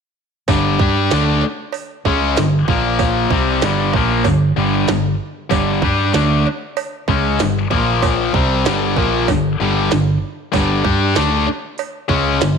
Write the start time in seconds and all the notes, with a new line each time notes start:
0.48 G1 G2 D3 G3, kick, open hi-hat, cowbell
0.79 G2 G3 D4 G4, kick
1.11 D2 D3 A3 D4, snare, open hi-hat, cowbell
1.41 muted overdriven electric guitar stroke, muted distorted electric guitar stroke, cowbell
1.73 open hi-hat, cowbell
2.05 C#2 C#3 G#3 C#4, kick
2.36 G1 G2 D3, snare, open hi-hat, cowbell
2.68 A#1 A#2 F3 A#3, kick
2.99 kick, open hi-hat, cowbell
3.30 C2 C3 G3 C4, kick
3.61 G1 G2 D3 G3, snare, open hi-hat, cowbell
3.93 A#1 A#2 F3 A#3, kick, cowbell
4.24 G1 G2 D3, kick, open hi-hat, cowbell
4.57 G1 G2 D3 G3
4.88 G1 G2 D3, snare, open hi-hat, cowbell
5.50 G1 G2 D3 G3, kick, open hi-hat, cowbell
5.82 G2 G3 D4 G4, kick
6.13 D2 D3 A3 D4, snare, open hi-hat, cowbell
6.45 muted distorted electric guitar stroke, muted overdriven electric guitar stroke, cowbell
6.77 open hi-hat, cowbell
7.08 C#2 C#3 G#3 C#4, kick
7.39 G1 G2 D3, snare, open hi-hat, cowbell
7.70 A#1 A#2 F3 A#3, kick
8.03 kick, open hi-hat, cowbell
8.33 C2 C3 G3 C4, kick
8.65 G1 G2 D3 G3, snare, open hi-hat, cowbell
8.96 A#1 A#2 F3 A#3, kick, cowbell
9.28 G1 G2 D3, kick, open hi-hat, cowbell
9.60 G1 G2 D3 G3
9.91 G1 G2 D3, snare, open hi-hat, cowbell
10.52 G1 G2 D3 G3, kick, open hi-hat, cowbell
10.83 G2 G3 D4 G4, kick
11.15 D2 D3 A3 D4, snare, open hi-hat, cowbell
11.47 muted distorted electric guitar stroke, muted overdriven electric guitar stroke, cowbell
11.78 open hi-hat, cowbell
12.08 C#2 C#3 G#3 C#4, kick
12.41 G1 G2 D3, snare, open hi-hat, cowbell